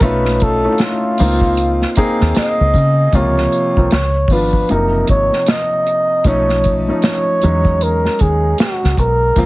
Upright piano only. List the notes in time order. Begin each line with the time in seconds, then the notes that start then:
0.02 A3 C#4 D#4 F4
0.64 A3 C#4 D#4 E4
0.72 F4
1.19 A#3 C4 D#4 F4
1.97 A#3 C4 D#4 G#4
3.14 C3 F3 A#3 F4
3.76 F3 A#3 C4 F4
4.31 F3 B3 D4 F4
4.70 C3 F3 A#3 D#4
6.26 F3 A3 C#4 D#4
6.88 F3 A3 C#4 D#4
7.43 F#3 G#3 C#4 D#4
9.37 F3 A#3 C4 F4